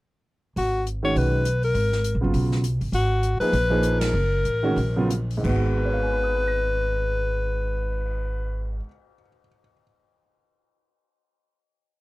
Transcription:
0.56 G#1 F#4, open hi-hat
0.87 closed hi-hat
1.03 D#3 G#3 C#4 F#4 C#5
1.16 B1 B4, open hi-hat
1.45 closed hi-hat
1.63 A#4, open hi-hat
1.74 G#1, open hi-hat
1.92 snare
2.04 closed hi-hat
2.15 A#1
2.21 G1 C#3 F#3 B3 F4
2.34 B1, open hi-hat
2.52 snare
2.64 closed hi-hat
2.81 G1, open hi-hat
2.92 G#1 F#4, open hi-hat
3.23 closed hi-hat
3.40 F3 A#3 D#4 G#4 B4, muted upright bass stroke, open hi-hat
3.53 A#1, open hi-hat
3.70 F3 A#3 D#4 G#4
3.83 closed hi-hat
4.00 A#4, snare, ride
4.13 F#1
4.45 A1, closed hi-hat
4.63 D#3 G#3 C#4 F#4
4.76 A#1, open hi-hat
4.96 C#3 F#3 B3 F4
5.10 closed hi-hat
5.31 open hi-hat
5.37 G#2 D#3
5.44 G#1 G#3 B3 B4, kick, crash
5.49 F#4
5.65 cymbal swell
5.78 A#4
5.86 C#5
5.94 F5
6.03 G#5
6.12 B5
6.24 D#6
6.35 F#6
6.48 A#6

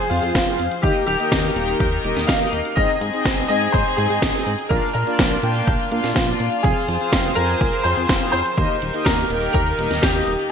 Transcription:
Already playing: F3 F4 G#4 C5
0.10 F2 C4 F4 G#4 F5, closed hi-hat
0.23 F2, closed hi-hat
0.35 F1, kick, snare, closed hi-hat
0.47 C4 F4 G#4 F5, closed hi-hat
0.59 F2, closed hi-hat
0.71 closed hi-hat
0.82 D#2 D#3 A#3 D#4 G4 A#4 D#5, kick, closed hi-hat
1.06 D#1 G4, closed hi-hat
1.20 A#3 D#4 G4 D#5, closed hi-hat
1.32 D#2, kick, snare, closed hi-hat
1.44 closed hi-hat
1.56 D#1 A#3 D#4 G4 G5, closed hi-hat
1.68 closed hi-hat
1.80 D#2, kick, closed hi-hat
1.92 closed hi-hat
2.04 D#1 A#3 D#4 G4 D#5, closed hi-hat
2.16 D#1, snare, closed hi-hat
2.27 D#2 F5, kick, snare, closed hi-hat
2.41 A#3 D#4 G4 D#5, closed hi-hat
2.53 D#1, closed hi-hat
2.65 closed hi-hat
2.76 G#1 C4 D#4 G#4 D#5, kick, closed hi-hat
3.01 G#2, closed hi-hat
3.13 C4 D#4 G#4 D#5, closed hi-hat
3.25 G#1, kick, snare, closed hi-hat
3.38 closed hi-hat
3.48 G#2 C4 D#4 G#4 D#5 G#5, closed hi-hat
3.62 closed hi-hat
3.72 G#1 C5, kick, closed hi-hat
3.86 closed hi-hat
3.97 G#2 C4 D#4 G#4 D#5, closed hi-hat
4.10 G#2, closed hi-hat
4.22 G#1, kick, snare, closed hi-hat
4.34 C4 D#4 G#4 D#5, closed hi-hat
4.46 G#2, closed hi-hat
4.59 closed hi-hat
4.69 A#1 A#3 D4 F4 A#4 D5, kick, closed hi-hat
4.93 A#2 A#4, closed hi-hat
5.07 A#3 D4 F4 D5, closed hi-hat
5.19 A#1, kick, snare, closed hi-hat
5.31 closed hi-hat
5.43 A#2 A#3 D4 F4 G5, closed hi-hat
5.55 closed hi-hat
5.67 A#1, kick, closed hi-hat
5.80 closed hi-hat
5.92 A#2 A#3 D4 F4 F5, closed hi-hat
6.04 A#2, snare, closed hi-hat
6.14 A#1 F4, kick, snare, closed hi-hat
6.28 A#3 D4 F4 D5, closed hi-hat
6.40 A#2, closed hi-hat
6.52 closed hi-hat
6.63 F1 F3 C4 F4 G#4 C5 F5, kick, closed hi-hat
6.88 F2, closed hi-hat
7.00 C4 F4 G#4 F5, closed hi-hat
7.13 F1, kick, snare, closed hi-hat
7.25 closed hi-hat
7.35 F2 C4 F4 G#4 A#4 G#5, closed hi-hat
7.49 closed hi-hat
7.61 F1, kick, closed hi-hat
7.73 closed hi-hat
7.84 F2 C4 F4 G#4 C5 F5, closed hi-hat
7.97 F2, closed hi-hat
8.09 F1, kick, snare, closed hi-hat
8.21 C4 F4 G#4 F5, closed hi-hat
8.32 F2 C5, closed hi-hat
8.46 closed hi-hat
8.58 D#2 D#3 A#3 D#4 G4 A#4 D#5, kick, closed hi-hat
8.82 D#1, closed hi-hat
8.94 A#3 D#4 G4 D#5, closed hi-hat
9.05 D#2 A#4, kick, snare, closed hi-hat
9.18 closed hi-hat
9.30 D#1 A#3 D#4 G4 G5, closed hi-hat
9.42 closed hi-hat
9.53 D#2 A#4, kick, closed hi-hat
9.67 closed hi-hat
9.79 D#1 A#3 D#4 G4 D#5, closed hi-hat
9.91 D#1, snare, closed hi-hat
10.01 D#2 G4, kick, snare, closed hi-hat
10.15 A#3 D#4 G4 D#5, closed hi-hat
10.27 D#1, closed hi-hat
10.39 closed hi-hat

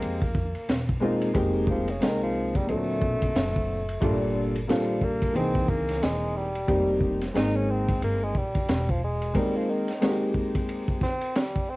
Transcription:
Already playing: G#3 A#3 C4 D#4 G4
0.02 F2, ride
0.22 kick
0.35 kick
0.55 muted upright bass stroke, ride
0.69 E1, snare, hi-hat pedal, ride
0.89 kick
1.00 G#3 A#3 C4 D#4 F4
1.22 ride
1.34 F1 G#3 A#3 C4 D#4 G4, kick, ride
1.67 F3, kick
1.88 C#3, ride
2.00 C2 D#3 G#3 A#3 C4 D#4 A4, snare, hi-hat pedal, ride
2.09 A#4
2.23 F3
2.55 G3, kick, ride
2.67 D2 A#2 F#3 A3 C4 D4 A4, ride
3.01 B1, kick
3.22 kick, ride
3.35 F#1, snare, hi-hat pedal, ride
3.56 kick
3.89 ride
4.00 G1 A#2 G3 D4 F4 A4, kick, ride
4.55 ride
4.67 A#1 F3 G3 A#3 D4 F4 A4, snare, hi-hat pedal, ride
5.01 A#3, kick
5.22 kick, ride
5.33 C2 E3 A#3 C4 D#4 G#4, ride
5.55 kick
5.68 C#2 A#3, kick
5.89 snare, ride
6.02 E1 G#3, snare, hi-hat pedal, ride
6.36 G3
6.55 ride
6.67 F1 G3 A#3 C4 D#4 G4, kick, ride
7.01 kick
7.21 snare, ride
7.34 G#1 G#3 A#3 C4 D#4 A#4, snare, hi-hat pedal, ride
7.56 C#4
7.70 C4
7.88 kick, ride
8.02 G1 A#3, ride
8.23 G#3
8.35 G3, kick
8.55 kick, ride
8.69 E1, snare, hi-hat pedal, ride
8.89 F3, kick
9.04 G#3
9.22 ride
9.34 G3 G#3 A#3 C4 D#4 A#4, kick, ride
9.57 F3
9.70 D#3
9.88 snare, ride
10.00 G#3 A#3 C4 D#4 F#4, snare, hi-hat pedal, ride
10.09 G4
10.34 kick
10.55 kick, ride
10.69 ride
10.88 kick
11.01 C4, kick, snare
11.21 ride
11.35 G3, snare, hi-hat pedal, ride
11.56 kick
11.70 C4

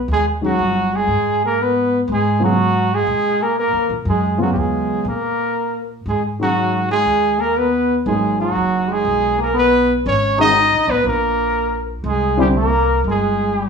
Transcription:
0.08 D#2 G#3
0.12 G#4
0.41 D#3 F#3 G#3 C#4 F#4
0.46 F#4
0.58 G1
0.94 G#3 G#4
1.07 G#2
1.45 A#3 A#4
1.61 B3 B4
2.08 G#2 G#3
2.13 G#4
2.40 C#3 F#3 B3 F4
2.44 F#4
2.93 G#3 G#4
3.07 A#2
3.42 A#3 A#4
3.59 A#3 A#4
3.73 D#3
3.89 A#2
4.05 F#2 G#3 G#4
4.38 C#3 F#3 B3 F4
4.42 F#4
4.52 D#2 G3 G4
4.59 G#3 G#4
5.05 A#2 A#3
5.09 A#4
6.06 G#2 G#3 G#4
6.39 D#3 F#3 G#3 C#4 F#4
6.91 G#3 G#4
7.05 D#2
7.39 A#3 A#4
7.58 B3 B4
8.06 G#1 F#3 G#3 A#3 D#4 G#4
8.39 F#3 F#4
8.55 F#1
8.88 G#3
8.93 G#4
9.05 B1
9.38 A#3
9.42 A#4
9.54 B3
9.59 B4
10.05 G#1 C#4 C#5
10.38 D#3 G#3 C#4 D#4 F#4 D#5
10.72 A#1
10.88 A1 B3 B4
11.04 A#1 A#3 A#4
12.04 C2 G#3 G#4
12.37 D3 G3 C4 E4 G4
12.55 A#3 A#4
13.04 G1 G#3
13.10 G#4

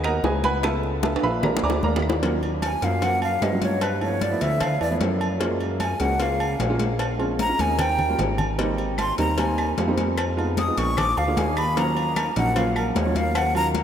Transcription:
Already playing: D#2
0.04 A#3 B3 F#4 A#4 D#5 F#5 A#5, high conga, high timbale, claves
0.23 C#2 G#4 B4 D#5 G#5, high bongo, low bongo, high conga, low timbale
0.44 B4 F#5 G#5 B5, high bongo, high conga, high timbale
0.63 A3 B3 F4 A4 E5 F5 A5, high bongo, high conga, high timbale, claves
0.83 high bongo, high conga
1.03 A4 E5 F5 A5, high bongo, high conga, high timbale
1.16 high timbale
1.23 A#1 B4 E5 F5 B5, high conga
1.43 G#3 D4 F4 A#4 D5 F5 A#5, high bongo, high conga, low conga, low timbale, claves
1.57 low bongo, low timbale
1.63 D2 D5 G#5 A#5 D6, high conga
1.70 low bongo, low timbale
1.83 D#2 A#4 D5 F5 A#5, high conga
1.96 low bongo, low timbale
2.02 high conga, claves
2.10 low bongo, low timbale
2.23 F#3 A#3 C#4 F4, cowbell, high conga
2.42 high conga, low agogo
2.62 G#5, cowbell, high conga, low timbale, low agogo
2.82 F#2 F#3 A#3 C#4 F4 F5, cowbell
3.02 F#3 A#3 C#4 F4 F#5, cowbell, high conga, low agogo
3.22 F5, high conga, low agogo
3.42 G2 D#5, cowbell, high conga, low timbale
3.52 F#3 A#3 C#4 F4
3.62 C#5, cowbell, high conga
3.81 B4, cowbell, high conga, low agogo
4.01 F3 A3 B3 E4 C#5, high conga, low agogo
4.21 D5, cowbell, high conga, low timbale
4.31 F3 A3 B3 E4
4.41 D2 E5, cowbell, high conga, low agogo
4.60 F5, cowbell, high conga, low conga, low agogo
4.81 E2 D5, high conga, low agogo
4.90 F3 A3 B3 E4
5.01 F#2, cowbell, high conga, low timbale
5.21 high conga, low agogo
5.40 G#3 A#3 C#4 F4, cowbell, high conga
5.60 high conga, low agogo
5.80 G#5, cowbell, high conga, low timbale, low agogo
6.00 C#2 G#3 A#3 C#4 F#4 F#5, cowbell
6.20 G#3 A#3 C#4 F4 F5, cowbell, high conga, low agogo
6.40 high conga, low agogo
6.60 A#1, cowbell, high conga, low timbale
6.70 G#3 A#3 C#4 F4
6.79 cowbell, high conga
6.99 cowbell, high conga, low agogo
7.19 G#3 C4 C#4 F4, high conga, low agogo
7.39 A#5, cowbell, high conga, low timbale
7.49 G#3 C4 C#4 F4
7.59 D#2 G#5, cowbell, high conga, low agogo
7.79 G5, cowbell, low conga, low agogo
7.99 low conga, low agogo
8.09 G3 A#3 C#4 F4
8.19 G#1, cowbell, low conga, low timbale
8.38 low conga, low agogo
8.58 G3 A#3 C4 D#4, cowbell, high conga
8.78 high conga, low agogo
8.98 C6, cowbell, high conga, low timbale, low agogo, claves
9.18 D#2 G3 A#3 C4 D#4 A#5, cowbell
9.38 G3 A#3 C4 D#4 G#5, cowbell, high conga, low agogo
9.58 high conga, low agogo, claves
9.78 F2, cowbell, high conga, low timbale
9.88 G3 A#3 C4 D#4
9.98 cowbell, high conga
10.18 cowbell, high conga, low agogo, claves
10.37 G#3 B3 D#4 F4, high conga, low agogo
10.57 D#6, cowbell, high conga, low timbale
10.68 G#3 B3 D#4 F4
10.77 A#1 C#6, cowbell, high conga, low agogo
10.97 D6, cowbell, high conga, low conga, low agogo, claves
11.17 D2 F5, high conga, low agogo
11.28 G#3 A#3 D4 F4
11.37 D#2 G#5, cowbell, high conga, low timbale
11.57 B5, high conga, low agogo, claves
11.77 F#3 A#3 C#4 F4 A#5, cowbell, high conga
11.96 high conga, low agogo
12.16 cowbell, high conga, low timbale, low agogo, claves
12.36 A#1 F#3 A#3 C#4 D#4 F#5, cowbell
12.56 F#3 A#3 C#4 F4 F5, cowbell, high conga, low agogo
12.75 A#4, high conga, low agogo, claves
12.95 D#2 C#5, cowbell, high conga, low timbale
13.06 F#3 A#3 C#4 F4
13.15 F5, cowbell, high conga
13.35 F#5, cowbell, high conga, low agogo, claves
13.55 F#3 A#3 C#4 F4 A#5, high conga, low agogo
13.74 cowbell, high conga, low timbale

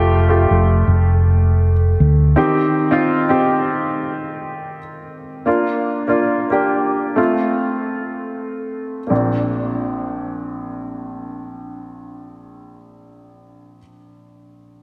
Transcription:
Already playing: F1 A3 F4 G4
0.29 A3 F4 G4
0.50 F1
0.87 F1
2.00 D2
2.36 D#3 C4 D#4 G4
2.91 C4 D#4 F4
3.29 C4 D#4 G4
5.46 A#3 D4 F4
6.08 A#3 D4 F4
6.50 A#3 D4 G4
7.16 A3 C4 F4
9.07 A#1 A#3 C4
9.13 D4

